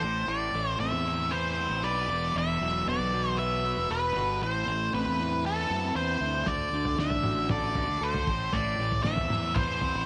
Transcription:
0.00 0.26 A1 medium
0.00 0.26 A2 medium
0.00 0.30 C5 loud
0.28 0.51 A1 medium
0.28 1.57 A2 medium
0.28 0.80 D5 medium
0.54 0.77 A1 medium
0.54 1.84 A3 medium
0.80 0.92 A1 medium
0.80 1.57 C4 medium
0.80 1.33 E5 loud
0.92 1.66 E2 medium
1.07 2.65 E4 medium
1.31 1.84 B4 medium
1.31 1.85 C5 loud
1.58 2.09 C4 medium
1.70 1.83 A1 medium
1.83 2.07 B1 medium
1.83 3.38 B4 medium
1.83 2.36 D5 loud
2.08 2.32 E1 medium
2.08 2.35 E2 medium
2.35 2.58 E1 medium
2.35 3.64 E2 medium
2.35 2.88 E5 loud
2.61 2.84 E1 medium
2.61 3.90 F#3 medium
2.87 2.98 E1 medium
2.87 3.64 B3 medium
2.87 3.38 D5 loud
3.00 3.73 B1 medium
3.14 4.15 F#4 medium
3.39 3.89 B4 medium
3.39 3.91 E5 loud
3.65 4.42 B3 medium
3.77 3.89 E1 medium
3.90 4.13 E1 medium
3.90 4.41 B4 medium
3.90 4.43 B4 medium
4.16 4.39 G1 medium
4.16 4.42 F#4 medium
4.42 4.65 A1 loud
4.42 5.71 A2 medium
4.42 4.94 C5 medium
4.67 4.91 A1 medium
4.67 5.99 A3 medium
4.94 5.05 A1 medium
4.94 5.68 C4 medium
4.94 5.46 B4 medium
5.07 5.66 E2 medium
5.20 6.20 E4 medium
5.44 5.93 A4 medium
5.44 5.94 B4 medium
5.69 5.93 F#2 medium
5.69 6.47 C4 medium
5.95 6.19 E2 medium
5.95 6.47 B4 medium
5.95 6.49 C5 medium
6.21 6.44 D2 medium
6.21 6.47 E4 medium
6.46 6.71 D2 medium
6.46 6.73 D3 medium
6.46 7.00 D5 medium
6.46 kick loud
6.46 floor tom medium
6.72 6.96 D2 medium
6.72 8.02 D3 medium
6.85 floor tom medium
6.98 7.10 D2 medium
6.98 7.75 D4 medium
6.98 7.50 E5 medium
6.98 snare medium
7.10 7.85 A1 medium
7.10 floor tom medium
7.24 8.28 F#4 medium
7.24 mid tom medium
7.49 8.00 A4 medium
7.49 8.04 D5 loud
7.49 kick loud
7.49 floor tom medium
7.49 mid tom medium
7.75 8.28 D4 medium
7.75 floor tom medium
7.88 8.00 D2 medium
8.01 8.25 D2 medium
8.01 8.27 A4 medium
8.01 8.56 C5 medium
8.14 floor tom medium
8.27 8.51 A1 medium
8.27 8.52 A2 medium
8.27 kick loud
8.53 8.76 A1 medium
8.53 9.82 A2 medium
8.53 9.03 D5 medium
8.53 floor tom medium
8.78 9.02 A1 medium
8.78 10.06 A3 medium
8.92 floor tom medium
9.03 9.16 A1 medium
9.03 9.80 C4 medium
9.03 9.57 E5 medium
9.03 snare medium
9.16 9.90 E2 loud
9.16 floor tom medium
9.30 10.06 E4 medium
9.30 mid tom medium
9.55 10.06 B4 medium
9.55 10.06 C5 loud
9.55 kick loud
9.55 floor tom medium
9.55 mid tom medium
9.81 10.06 C4 medium
9.81 floor tom medium
9.94 10.05 A1 medium

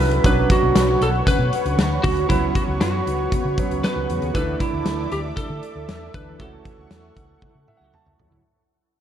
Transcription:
0.00 0.18 C2 medium
0.00 0.22 F#3 medium
0.00 0.22 C#4 medium
0.00 0.23 E4 medium
0.00 0.26 A4 medium
0.00 0.25 B4 medium
0.11 closed hi-hat medium
0.24 0.44 B1 medium
0.24 2.25 F#3 medium
0.24 2.26 C#4 medium
0.24 2.26 D4 medium
0.24 4.31 B4 medium
0.24 0.52 B4 loud
0.24 2.26 B4 medium
0.24 2.27 C#5 medium
0.24 4.30 F#5 medium
0.24 4.31 C#6 medium
0.24 kick loud
0.24 closed hi-hat medium
0.50 1.04 F#4 medium
0.50 kick medium
0.50 closed hi-hat medium
0.63 0.72 B1 medium
0.76 0.95 B1 medium
0.76 snare loud
0.76 closed hi-hat loud
1.01 1.20 B1 medium
1.01 1.09 A4 medium
1.01 closed hi-hat medium
1.27 1.38 D3 medium
1.27 1.38 C#4 medium
1.27 1.38 F#4 medium
1.27 1.75 B4 medium
1.27 muted fingered electric bass stroke soft
1.27 kick medium
1.27 closed hi-hat medium
1.39 1.49 B2 medium
1.53 closed hi-hat medium
1.65 1.75 C#2 medium
1.65 1.77 D3 medium
1.65 1.77 C#4 medium
1.65 1.77 F#4 medium
1.65 closed hi-hat soft
1.77 1.97 D2 medium
1.77 snare medium
1.77 closed hi-hat medium
2.03 2.23 D2 medium
2.03 2.26 D3 medium
2.03 2.26 C#4 medium
2.03 2.29 F#4 medium
2.03 2.26 F#4 loud
2.03 kick medium
2.03 open hi-hat medium
2.17 closed hi-hat soft
2.29 2.49 C#2 medium
2.29 3.55 F#3 medium
2.29 3.55 B3 medium
2.29 3.56 C#4 medium
2.29 2.55 E4 medium
2.29 3.56 B4 medium
2.29 4.33 C#5 medium
2.29 kick medium
2.29 closed hi-hat medium
2.55 2.63 F#4 medium
2.55 kick medium
2.55 closed hi-hat medium
2.68 2.78 C#2 medium
2.81 3.00 F#2 medium
2.81 3.87 F#4 medium
2.81 snare loud
2.81 closed hi-hat loud
3.07 3.26 C#2 medium
3.07 closed hi-hat medium
3.32 3.43 C#3 medium
3.32 3.43 B3 medium
3.32 3.43 F#4 medium
3.32 muted fingered electric bass stroke soft
3.32 kick medium
3.32 closed hi-hat medium
3.45 3.55 C#3 medium
3.58 4.35 F#3 soft
3.58 4.35 B3 medium
3.58 4.35 C#4 medium
3.58 4.35 B4 medium
3.58 kick medium
3.58 closed hi-hat medium
3.71 3.80 C#2 medium
3.71 3.82 C#3 medium
3.71 3.82 B3 medium
3.71 3.82 F#4 medium
3.71 closed hi-hat soft
3.84 4.34 B4 medium
3.84 snare medium
3.84 closed hi-hat medium
3.96 4.06 C#2 medium
4.09 4.19 E2 medium
4.09 4.31 C#3 medium
4.09 4.31 B3 medium
4.09 4.31 F#4 loud
4.09 closed hi-hat medium
4.22 4.32 D#2 medium
4.22 closed hi-hat soft
4.34 4.54 D2 medium
4.34 6.36 E3 medium
4.34 6.36 A3 medium
4.34 6.36 D4 medium
4.34 8.41 A4 medium
4.34 6.37 A4 medium
4.34 4.62 B4 loud
4.34 6.38 D5 medium
4.34 8.41 E5 medium
4.34 6.38 D6 medium
4.34 kick medium
4.34 closed hi-hat medium
4.60 5.12 E4 medium
4.60 kick medium
4.60 closed hi-hat medium
4.73 4.83 D2 medium
4.86 5.05 D2 medium
4.86 snare loud
4.86 closed hi-hat medium
5.12 5.31 D2 medium
5.12 5.19 G4 medium
5.12 closed hi-hat medium
5.37 5.48 E3 medium
5.37 5.48 D4 medium
5.37 6.14 A4 medium
5.37 5.48 A4 medium
5.37 muted fingered electric bass stroke soft
5.37 kick medium
5.37 closed hi-hat medium
5.49 5.59 D3 medium
5.63 closed hi-hat medium
5.75 5.85 D2 medium
5.75 5.87 E3 medium
5.75 5.87 D4 medium
5.75 5.87 A4 medium
5.88 6.08 E2 medium
5.88 snare medium
5.88 closed hi-hat medium
6.14 6.34 D2 medium
6.14 6.36 E3 loud
6.14 6.36 D4 medium
6.14 6.36 A4 loud
6.14 6.41 B4 medium
6.14 kick medium
6.14 closed hi-hat medium
6.39 6.59 C#2 medium
6.39 8.41 E3 medium
6.39 8.41 A3 medium
6.39 8.41 C#4 medium
6.39 8.42 F#4 medium
6.39 7.90 A4 medium
6.39 8.43 F#5 medium
6.39 8.43 C#6 medium
6.39 kick medium
6.39 closed hi-hat medium
6.65 kick medium
6.65 closed hi-hat medium
6.78 6.88 C#2 medium
6.91 7.10 E2 medium
6.91 snare loud
6.91 closed hi-hat loud
7.16 7.36 C#2 medium
7.16 kick medium
7.16 closed hi-hat medium
7.42 7.53 F#3 medium
7.42 7.53 E4 medium
7.42 7.53 A4 medium
7.42 muted fingered electric bass stroke soft
7.42 kick medium
7.42 high tom soft
7.55 7.65 C#3 medium
7.68 7.76 E5 medium
7.68 mid tom medium
7.77 7.90 C#2 medium
7.77 7.92 F#3 medium
7.77 7.92 E4 medium
7.77 7.92 A4 medium
7.77 7.93 F#5 medium
7.94 8.42 A5 medium
7.94 mid tom medium
8.06 8.16 C#2 medium
8.06 mid tom medium
8.19 8.29 D#2 medium
8.19 8.41 F#3 medium
8.19 8.41 E4 medium
8.19 8.41 A4 medium
8.19 floor tom medium
8.32 8.41 D2 medium
8.32 floor tom medium

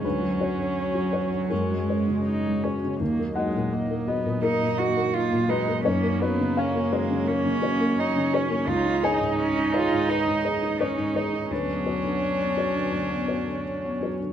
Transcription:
0.04 1.46 D2 medium
0.04 1.50 F#3 soft
0.04 1.53 F#3 soft
0.04 1.47 C#4 medium
0.04 3.00 F#4 medium
0.04 1.47 B4 medium
0.04 2.97 C#5 soft
0.22 0.51 F#3 soft
0.41 0.57 F#4 soft
0.41 0.57 C#5 soft
0.59 1.17 D3 soft
0.95 1.24 F#3 soft
1.13 1.30 F#4 soft
1.13 1.30 C#5 soft
1.31 1.50 D3 soft
1.50 2.96 F#2 soft
1.50 2.80 G#3 medium
1.50 3.01 G#3 medium
1.50 2.16 C#4 soft
1.50 2.21 A#4 soft
1.71 2.00 G#3 soft
1.89 2.05 F#4 soft
1.89 2.06 C#5 soft
2.08 2.67 C#3 soft
2.25 2.65 D#4 medium
2.46 2.75 G#3 soft
2.64 2.99 C#4 soft
2.64 2.81 F#4 soft
2.64 2.81 C#5 soft
2.84 3.01 C#3 soft
3.00 4.39 D#2 medium
3.00 8.64 F#3 medium
3.00 3.34 A#3 medium
3.00 8.65 D#4 medium
3.00 5.82 D#5 medium
3.19 3.48 A#3 soft
3.35 3.74 G#3 medium
3.35 3.53 F#4 soft
3.35 3.53 D#5 soft
3.35 4.39 F#5 medium
3.55 4.12 A#2 soft
3.73 4.10 A#3 medium
3.90 4.18 A#3 soft
4.07 4.44 B3 medium
4.07 4.23 F#4 soft
4.07 4.24 D#5 soft
4.25 4.54 A#2 soft
4.42 5.14 A#3 medium
4.42 4.72 A#3 soft
4.42 4.80 D#4 medium
4.42 5.45 A#4 medium
4.63 4.90 A#2 soft
4.78 5.15 F#4 medium
4.78 4.95 F#4 soft
4.78 4.95 D#5 medium
4.97 5.53 A#3 soft
5.14 5.51 A#3 medium
5.14 5.51 F4 medium
5.32 5.60 A#2 soft
5.49 5.85 G#3 medium
5.49 5.84 D#4 medium
5.49 5.66 F#4 soft
5.49 5.82 B4 medium
5.49 5.66 D#5 medium
5.68 5.85 A#3 soft
5.84 7.23 F#2 medium
5.84 6.24 A#3 medium
5.84 6.23 C#4 medium
5.84 6.20 C#5 medium
5.84 11.51 C#5 medium
6.03 6.31 A#3 soft
6.21 7.30 A#3 medium
6.21 6.60 B3 medium
6.21 6.37 F#4 soft
6.21 6.37 C#5 medium
6.39 6.95 C#3 medium
6.57 6.94 C#4 medium
6.57 8.64 F5 medium
6.75 7.03 A#3 soft
6.92 7.30 G#3 medium
6.92 7.08 F#4 soft
6.92 7.08 C#5 medium
7.10 7.38 C#3 medium
7.28 7.56 A#3 medium
7.28 7.63 A#3 medium
7.28 8.01 C#4 medium
7.45 7.73 C#3 soft
7.62 8.00 A#3 medium
7.62 7.78 F#4 medium
7.62 7.78 C#5 medium
7.80 8.36 A#3 medium
7.98 8.68 C#4 medium
7.98 8.35 D#4 medium
8.16 8.44 C#3 medium
8.33 8.70 C#4 medium
8.33 8.49 F#4 medium
8.33 8.49 C#5 medium
8.49 8.67 A#3 medium
8.67 10.04 C#2 medium
8.67 10.75 D#4 medium
8.67 11.51 D#4 medium
8.67 9.05 F4 medium
8.67 11.51 G#4 medium
8.85 9.13 D#4 soft
9.03 9.38 D#4 medium
9.03 9.19 G#4 soft
9.03 9.19 C#5 soft
9.03 10.05 G#5 medium
9.20 9.76 G#2 medium
9.39 9.76 C#4 medium
9.56 9.84 D#4 soft
9.74 10.11 F4 medium
9.74 9.89 G#4 soft
9.74 9.89 C#5 soft
9.92 10.20 G#2 soft
10.08 10.37 D#4 soft
10.08 10.82 D#4 medium
10.08 10.75 B4 medium
10.27 10.55 G#2 soft
10.45 10.60 G#4 soft
10.45 10.60 C#5 soft
10.62 11.19 D#4 soft
10.80 11.18 C#4 medium
10.80 11.50 D#4 medium
10.80 11.14 C#5 medium
10.97 11.26 G#2 soft
11.15 11.53 D#4 soft
11.15 11.31 G#4 soft
11.15 11.31 C#5 soft
11.32 11.50 D#4 soft
11.50 12.90 D2 medium
11.50 14.33 F#3 medium
11.50 14.33 B3 soft
11.50 14.15 C#4 medium
11.50 14.03 D4 medium
11.50 13.63 B4 medium
11.50 14.33 C#5 medium
11.68 11.97 B3 soft
11.86 12.03 F#4 soft
11.86 12.03 C#5 soft
12.04 12.62 D3 soft
12.40 12.69 B3 soft
12.57 12.74 F#4 soft
12.57 12.74 C#5 soft
12.75 13.04 D3 soft
12.92 14.33 D2 soft
13.10 13.40 B3 soft
13.28 13.45 F#4 soft
13.28 13.45 C#5 soft
13.47 14.06 D3 soft
13.84 14.13 B3 soft
14.02 14.19 F#4 soft
14.02 14.19 C#5 soft
14.21 14.33 D3 soft

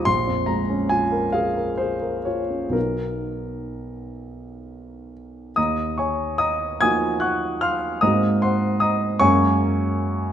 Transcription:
0.05 2.71 A#1 medium
0.05 0.47 C6 loud
0.27 0.61 F2 soft
0.46 0.82 G#3 soft
0.46 0.90 A#5 medium
0.70 1.04 C#4 soft
0.89 1.26 F4 soft
0.89 1.34 G#5 medium
1.12 1.47 A#4 soft
1.32 1.70 G#4 medium
1.32 1.78 F5 medium
1.57 1.93 A#4 soft
1.78 2.17 G#4 soft
1.78 2.25 C5 medium
2.02 2.40 A#4 soft
2.25 2.65 F4 soft
2.25 2.74 C#5 medium
2.50 2.74 C#4 soft
2.69 5.51 B1 soft
2.69 5.51 F#3 soft
2.69 5.52 B3 soft
2.69 5.52 D#4 soft
2.69 5.52 F#4 soft
2.69 5.12 A#4 medium
5.56 6.78 D#2 medium
5.56 5.95 D#5 medium
5.56 5.96 A#5 medium
5.56 5.98 D#6 medium
5.98 6.37 C#5 medium
5.98 6.37 G#5 medium
5.98 6.39 C#6 medium
6.38 6.78 D#5 medium
6.38 6.78 A#5 medium
6.38 6.80 D#6 medium
6.81 7.99 F3 soft
6.81 7.99 A#3 soft
6.81 7.99 D#4 soft
6.81 7.99 F#4 medium
6.81 7.19 G#5 medium
6.81 7.19 D#6 medium
6.81 7.22 G#6 loud
7.20 7.59 F#5 medium
7.20 7.59 C#6 medium
7.20 7.61 F#6 medium
7.61 7.99 F5 medium
7.61 8.00 C6 medium
7.61 8.02 F6 medium
8.01 9.17 G#2 medium
8.01 9.17 G#3 soft
8.01 9.17 A#3 soft
8.01 9.17 C4 soft
8.01 9.18 F#4 soft
8.01 8.39 D#5 medium
8.01 8.39 A#5 medium
8.01 8.42 D#6 medium
8.42 8.79 C5 soft
8.42 8.79 F#5 medium
8.42 8.81 C6 medium
8.80 9.18 D#5 medium
8.80 9.18 A#5 medium
8.80 9.20 D#6 medium
9.19 10.32 F#2 medium
9.19 10.32 G#3 medium
9.19 10.32 A#3 soft
9.19 10.32 C#4 soft
9.19 10.32 F#4 soft
9.19 10.32 C#5 medium
9.19 10.32 G#5 medium
9.19 10.32 C#6 loud

